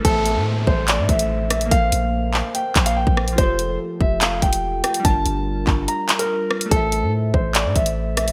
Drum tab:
HH |x-x-----x-xx--xx|x-x-----x-xx---x|x-x-----x-xx--xx|x-x-----x-xx---x|
CP |--------x-------|------x---x-----|--------x-------|------x---x-----|
SD |--------------r-|--------------r-|--------------r-|--------------r-|
BD |o-----o---o-----|o---------o--o--|o-----o---o-----|o-----o---------|

HH |x-x-----x-xx--xx|
CP |--------x-------|
SD |--------------r-|
BD |o-----o---o-----|